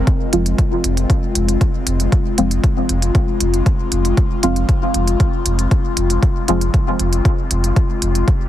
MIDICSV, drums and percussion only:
0, 0, Header, 1, 2, 480
1, 0, Start_track
1, 0, Key_signature, -4, "minor"
1, 0, Tempo, 512821
1, 67, Time_signature, 4, 2, 24, 8
1, 7944, End_track
2, 0, Start_track
2, 0, Title_t, "Drums"
2, 67, Note_on_c, 9, 36, 119
2, 67, Note_on_c, 9, 42, 29
2, 161, Note_off_c, 9, 36, 0
2, 161, Note_off_c, 9, 42, 0
2, 307, Note_on_c, 9, 42, 82
2, 401, Note_off_c, 9, 42, 0
2, 430, Note_on_c, 9, 42, 41
2, 524, Note_off_c, 9, 42, 0
2, 547, Note_on_c, 9, 36, 106
2, 547, Note_on_c, 9, 42, 32
2, 641, Note_off_c, 9, 36, 0
2, 641, Note_off_c, 9, 42, 0
2, 787, Note_on_c, 9, 42, 69
2, 881, Note_off_c, 9, 42, 0
2, 910, Note_on_c, 9, 42, 40
2, 1004, Note_off_c, 9, 42, 0
2, 1027, Note_on_c, 9, 36, 117
2, 1027, Note_on_c, 9, 42, 31
2, 1121, Note_off_c, 9, 36, 0
2, 1121, Note_off_c, 9, 42, 0
2, 1267, Note_on_c, 9, 42, 86
2, 1360, Note_off_c, 9, 42, 0
2, 1390, Note_on_c, 9, 42, 39
2, 1484, Note_off_c, 9, 42, 0
2, 1507, Note_on_c, 9, 36, 107
2, 1507, Note_on_c, 9, 42, 31
2, 1600, Note_off_c, 9, 36, 0
2, 1601, Note_off_c, 9, 42, 0
2, 1747, Note_on_c, 9, 42, 74
2, 1841, Note_off_c, 9, 42, 0
2, 1870, Note_on_c, 9, 42, 38
2, 1964, Note_off_c, 9, 42, 0
2, 1987, Note_on_c, 9, 36, 120
2, 1987, Note_on_c, 9, 42, 29
2, 2081, Note_off_c, 9, 36, 0
2, 2081, Note_off_c, 9, 42, 0
2, 2227, Note_on_c, 9, 42, 85
2, 2320, Note_off_c, 9, 42, 0
2, 2350, Note_on_c, 9, 42, 42
2, 2443, Note_off_c, 9, 42, 0
2, 2467, Note_on_c, 9, 36, 111
2, 2467, Note_on_c, 9, 42, 31
2, 2561, Note_off_c, 9, 36, 0
2, 2561, Note_off_c, 9, 42, 0
2, 2707, Note_on_c, 9, 42, 69
2, 2801, Note_off_c, 9, 42, 0
2, 2830, Note_on_c, 9, 42, 42
2, 2923, Note_off_c, 9, 42, 0
2, 2947, Note_on_c, 9, 36, 119
2, 2947, Note_on_c, 9, 42, 31
2, 3040, Note_off_c, 9, 42, 0
2, 3041, Note_off_c, 9, 36, 0
2, 3187, Note_on_c, 9, 42, 90
2, 3280, Note_off_c, 9, 42, 0
2, 3310, Note_on_c, 9, 42, 40
2, 3403, Note_off_c, 9, 42, 0
2, 3427, Note_on_c, 9, 36, 113
2, 3427, Note_on_c, 9, 42, 30
2, 3520, Note_off_c, 9, 42, 0
2, 3521, Note_off_c, 9, 36, 0
2, 3667, Note_on_c, 9, 42, 75
2, 3760, Note_off_c, 9, 42, 0
2, 3790, Note_on_c, 9, 42, 38
2, 3883, Note_off_c, 9, 42, 0
2, 3907, Note_on_c, 9, 36, 123
2, 3907, Note_on_c, 9, 42, 30
2, 4000, Note_off_c, 9, 36, 0
2, 4000, Note_off_c, 9, 42, 0
2, 4147, Note_on_c, 9, 42, 83
2, 4240, Note_off_c, 9, 42, 0
2, 4270, Note_on_c, 9, 42, 40
2, 4363, Note_off_c, 9, 42, 0
2, 4387, Note_on_c, 9, 36, 110
2, 4387, Note_on_c, 9, 42, 31
2, 4481, Note_off_c, 9, 36, 0
2, 4481, Note_off_c, 9, 42, 0
2, 4627, Note_on_c, 9, 42, 74
2, 4720, Note_off_c, 9, 42, 0
2, 4750, Note_on_c, 9, 42, 39
2, 4844, Note_off_c, 9, 42, 0
2, 4867, Note_on_c, 9, 36, 127
2, 4867, Note_on_c, 9, 42, 29
2, 4960, Note_off_c, 9, 42, 0
2, 4961, Note_off_c, 9, 36, 0
2, 5107, Note_on_c, 9, 42, 90
2, 5200, Note_off_c, 9, 42, 0
2, 5230, Note_on_c, 9, 42, 39
2, 5324, Note_off_c, 9, 42, 0
2, 5347, Note_on_c, 9, 36, 114
2, 5347, Note_on_c, 9, 42, 31
2, 5440, Note_off_c, 9, 42, 0
2, 5441, Note_off_c, 9, 36, 0
2, 5587, Note_on_c, 9, 42, 75
2, 5680, Note_off_c, 9, 42, 0
2, 5710, Note_on_c, 9, 42, 37
2, 5804, Note_off_c, 9, 42, 0
2, 5827, Note_on_c, 9, 36, 119
2, 5827, Note_on_c, 9, 42, 28
2, 5921, Note_off_c, 9, 36, 0
2, 5921, Note_off_c, 9, 42, 0
2, 6067, Note_on_c, 9, 42, 88
2, 6161, Note_off_c, 9, 42, 0
2, 6190, Note_on_c, 9, 42, 39
2, 6284, Note_off_c, 9, 42, 0
2, 6307, Note_on_c, 9, 36, 105
2, 6307, Note_on_c, 9, 42, 30
2, 6400, Note_off_c, 9, 42, 0
2, 6401, Note_off_c, 9, 36, 0
2, 6547, Note_on_c, 9, 42, 68
2, 6640, Note_off_c, 9, 42, 0
2, 6670, Note_on_c, 9, 42, 38
2, 6763, Note_off_c, 9, 42, 0
2, 6787, Note_on_c, 9, 36, 123
2, 6787, Note_on_c, 9, 42, 29
2, 6880, Note_off_c, 9, 36, 0
2, 6880, Note_off_c, 9, 42, 0
2, 7027, Note_on_c, 9, 42, 87
2, 7120, Note_off_c, 9, 42, 0
2, 7150, Note_on_c, 9, 42, 38
2, 7243, Note_off_c, 9, 42, 0
2, 7267, Note_on_c, 9, 36, 113
2, 7267, Note_on_c, 9, 42, 29
2, 7360, Note_off_c, 9, 36, 0
2, 7360, Note_off_c, 9, 42, 0
2, 7507, Note_on_c, 9, 42, 73
2, 7600, Note_off_c, 9, 42, 0
2, 7630, Note_on_c, 9, 42, 36
2, 7723, Note_off_c, 9, 42, 0
2, 7747, Note_on_c, 9, 36, 117
2, 7747, Note_on_c, 9, 42, 28
2, 7840, Note_off_c, 9, 36, 0
2, 7840, Note_off_c, 9, 42, 0
2, 7944, End_track
0, 0, End_of_file